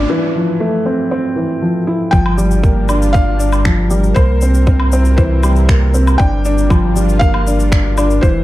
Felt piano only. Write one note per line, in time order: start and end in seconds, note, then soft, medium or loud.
0.00 0.12 F5 loud
2.11 2.84 G5 loud
3.13 4.18 F5 loud
4.14 5.15 C5 medium
5.17 5.90 C5 medium
6.18 6.91 G5 loud
7.19 8.25 F5 loud
8.21 8.44 C5 medium